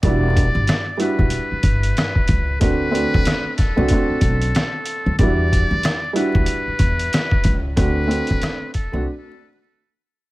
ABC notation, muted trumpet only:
X:1
M:4/4
L:1/8
Q:"Swing 16ths" 1/4=93
K:Em
V:1 name="Muted trumpet"
d3 B4- B | B3 A4- A | d3 B4- B | B3 A z4 |]